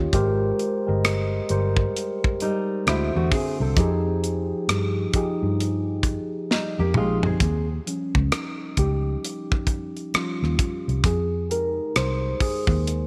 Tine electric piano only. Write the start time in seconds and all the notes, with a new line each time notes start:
Already playing: D#3 C#4 F4 G4 C#5
0.14 G#3 G4 A#4 C5
0.86 G#3 G4 A#4 D#5
1.49 G3 G4 A#4 C5
2.86 D3 D4 F#4 C5
3.77 F3 D#4 G4 G#4
5.14 F3 D#4 G4 G#4
6.95 F3 D#4 G4 G#4
7.87 F3 G3 C#4
8.33 D#4
8.79 G4
10.15 F3 G3 C#4 F4
11.06 G#4
11.50 G#3 D#4 G4 A#4
11.97 C5
12.42 G#4